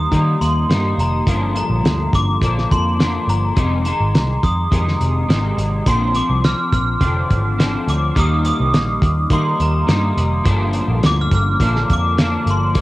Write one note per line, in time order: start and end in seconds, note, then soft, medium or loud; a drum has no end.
0.00 0.12 G3 soft
0.00 0.13 A#3 soft
0.00 0.12 D#4 soft
0.00 0.43 D#6 medium
0.11 0.68 D#3 soft
0.11 0.35 D#3 medium
0.11 0.70 G3 medium
0.11 0.71 A#3 medium
0.11 0.71 D#4 medium
0.11 kick medium
0.11 closed hi-hat medium
0.41 0.64 D#2 medium
0.41 1.00 C6 medium
0.41 closed hi-hat medium
0.69 0.93 G2 medium
0.69 1.27 D#3 medium
0.69 1.28 G3 medium
0.69 1.29 A#3 medium
0.69 1.28 D#4 medium
0.69 snare loud
0.69 closed hi-hat medium
0.98 1.21 F1 medium
0.98 1.53 A#5 medium
0.98 closed hi-hat medium
1.27 1.61 G1 medium
1.27 2.42 G2 medium
1.27 2.40 D3 medium
1.27 2.42 F3 medium
1.27 2.42 A#3 medium
1.27 2.43 D4 medium
1.27 kick loud
1.27 closed hi-hat medium
1.56 2.15 A#5 medium
1.56 closed hi-hat medium
1.70 1.81 A#1 medium
1.84 2.07 D2 medium
1.84 snare loud
1.84 closed hi-hat medium
2.13 2.36 G1 medium
2.13 2.73 D6 medium
2.13 kick medium
2.13 closed hi-hat medium
2.42 2.65 A#1 medium
2.42 2.98 D3 soft
2.42 3.00 F3 medium
2.42 2.99 A#3 medium
2.42 3.00 D4 medium
2.42 kick medium
2.42 closed hi-hat medium
2.58 snare soft
2.71 3.17 F2 medium
2.71 3.30 C6 medium
2.71 kick medium
2.71 closed hi-hat medium
2.99 3.56 D3 medium
2.99 3.57 F3 medium
2.99 3.57 A#3 medium
2.99 3.57 D4 medium
2.99 snare loud
2.99 closed hi-hat medium
3.28 3.51 G1 medium
3.28 3.82 A#5 medium
3.28 closed hi-hat medium
3.56 3.91 F1 medium
3.56 3.85 F2 medium
3.56 3.85 C3 medium
3.56 3.86 D#3 medium
3.56 3.85 G#3 medium
3.56 3.85 D#4 medium
3.56 kick loud
3.56 closed hi-hat medium
3.85 4.71 D#3 soft
3.85 4.71 G#3 soft
3.85 4.72 D#4 soft
3.85 4.45 A#5 medium
3.85 closed hi-hat medium
4.00 4.12 G#1 medium
4.14 4.37 C2 medium
4.14 snare loud
4.14 closed hi-hat medium
4.43 4.66 F2 medium
4.43 5.54 D#6 medium
4.43 kick medium
4.43 closed hi-hat medium
4.71 4.95 F2 medium
4.71 5.27 C3 medium
4.71 5.28 D#3 medium
4.71 5.29 G#3 medium
4.71 5.30 D#4 medium
4.71 kick medium
4.71 closed hi-hat medium
4.88 snare soft
5.01 5.23 F1 medium
5.01 closed hi-hat medium
5.29 5.52 G#1 medium
5.29 5.86 C3 medium
5.29 5.86 D#3 medium
5.29 5.87 G#3 medium
5.29 5.87 D#4 medium
5.29 snare loud
5.29 closed hi-hat medium
5.58 5.81 G#1 medium
5.58 closed hi-hat medium
5.86 6.21 A#1 medium
5.86 6.15 A#2 medium
5.86 6.15 D3 medium
5.86 6.15 F3 medium
5.86 6.15 C4 medium
5.86 6.13 D4 medium
5.86 6.16 C6 medium
5.86 kick loud
5.86 closed hi-hat medium
6.15 7.00 F3 soft
6.15 7.00 C4 soft
6.15 7.01 D4 soft
6.15 6.45 D6 medium
6.15 closed hi-hat medium
6.30 6.52 C2 medium
6.44 6.71 F6 loud
6.44 snare loud
6.44 closed hi-hat medium
6.72 6.95 A#1 medium
6.72 7.91 F6 medium
6.72 kick medium
6.72 closed hi-hat medium
7.00 7.24 F1 medium
7.00 7.57 D3 soft
7.00 7.58 F3 soft
7.00 7.59 C4 medium
7.00 7.59 D4 medium
7.00 kick medium
7.00 closed hi-hat medium
7.30 7.76 G#1 medium
7.30 kick medium
7.30 closed hi-hat medium
7.58 8.15 D3 medium
7.58 8.16 F3 medium
7.58 8.16 C4 medium
7.58 8.17 D4 medium
7.58 snare medium
7.58 closed hi-hat medium
7.87 8.10 D2 medium
7.87 8.18 D6 medium
7.87 closed hi-hat medium
8.15 8.51 D#2 loud
8.15 9.30 D#3 medium
8.15 9.31 G3 medium
8.15 9.31 A#3 medium
8.15 9.32 D#4 medium
8.15 kick loud
8.15 closed hi-hat medium
8.19 8.44 D#6 medium
8.45 9.34 D#6 medium
8.45 closed hi-hat medium
8.60 8.74 C2 medium
8.74 8.97 A#1 medium
8.74 snare loud
8.74 closed hi-hat medium
9.02 9.25 D#2 medium
9.02 kick medium
9.02 closed hi-hat medium
9.30 9.54 D#3 medium
9.30 9.86 D#3 medium
9.30 9.87 G3 medium
9.30 9.88 A#3 medium
9.30 9.88 D#4 medium
9.30 9.45 C6 medium
9.30 kick medium
9.30 closed hi-hat medium
9.60 9.83 D#2 medium
9.60 10.14 A#5 medium
9.60 closed hi-hat medium
9.87 10.11 G2 medium
9.87 10.44 D#3 medium
9.87 10.45 G3 medium
9.87 10.46 A#3 medium
9.87 10.46 D#4 medium
9.87 snare loud
9.87 closed hi-hat medium
10.17 10.40 F1 medium
10.17 closed hi-hat medium
10.44 10.80 G1 medium
10.44 11.60 G2 medium
10.44 11.59 D3 medium
10.44 11.61 F3 medium
10.44 11.61 A#3 medium
10.44 11.61 D4 medium
10.44 kick loud
10.44 closed hi-hat medium
10.73 closed hi-hat medium
10.88 11.00 A#1 medium
11.03 11.27 D2 medium
11.03 11.19 D6 medium
11.03 snare loud
11.03 closed hi-hat medium
11.21 11.34 F6 medium
11.32 11.55 G1 medium
11.32 11.87 F6 medium
11.32 kick medium
11.32 closed hi-hat medium
11.60 11.83 A#1 medium
11.60 12.16 D3 medium
11.60 12.18 F3 soft
11.60 12.18 A#3 medium
11.60 12.19 D4 medium
11.60 kick medium
11.60 closed hi-hat medium
11.76 snare soft
11.90 12.36 F2 medium
11.90 12.50 D6 medium
11.90 kick medium
11.90 closed hi-hat medium
12.18 12.75 D3 medium
12.18 12.75 F3 medium
12.18 12.76 A#3 medium
12.18 12.76 D4 medium
12.18 snare loud
12.18 closed hi-hat medium
12.46 12.75 G1 medium
12.46 closed hi-hat medium
12.51 12.81 C6 medium
12.74 12.81 F1 medium
12.74 12.81 F2 medium
12.74 12.81 C3 medium
12.74 12.81 D#3 medium
12.74 12.81 G#3 medium
12.74 12.81 D#4 medium
12.74 kick loud
12.74 closed hi-hat medium